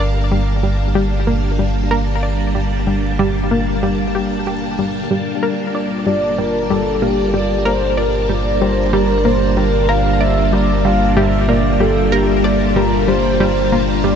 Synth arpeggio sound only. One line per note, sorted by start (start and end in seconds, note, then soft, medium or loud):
0.00 0.11 D5 medium
0.32 0.50 G3 medium
0.63 0.74 G3 medium
0.95 1.06 G3 medium
1.27 1.46 A#3 medium
1.59 1.87 G3 medium
1.91 2.19 A#4 loud
2.23 2.34 D5 medium
2.55 2.73 G3 medium
2.87 2.98 G3 medium
3.19 3.30 G3 loud
3.51 3.69 A#3 medium
3.83 4.10 G3 medium
4.15 4.33 G4 medium
4.47 4.74 G4 medium
4.79 4.90 G3 medium
5.11 5.38 G3 medium
5.43 5.70 A#4 medium
5.75 5.86 D5 medium
6.07 6.25 G3 medium
6.38 6.49 G3 medium
6.70 6.81 G3 medium
7.02 7.20 A#3 medium
7.34 7.61 G3 medium
7.65 7.93 A#4 loud
7.97 8.09 D5 medium
8.29 8.48 G3 medium
8.62 8.72 G3 medium
8.93 9.04 G3 loud
9.25 9.44 A#3 medium
9.57 9.85 G3 medium
9.89 10.16 A#4 loud
10.21 10.32 D5 medium
10.53 10.71 G3 medium
10.85 10.96 G3 medium
11.17 11.28 G3 loud
11.49 11.67 A#3 medium
11.80 12.08 G3 medium
12.12 12.40 A#4 loud
12.44 12.55 D5 medium
12.76 12.95 G3 medium
13.08 13.19 G3 medium
13.40 13.51 G3 loud
13.72 13.91 A#3 medium
14.04 14.15 G3 medium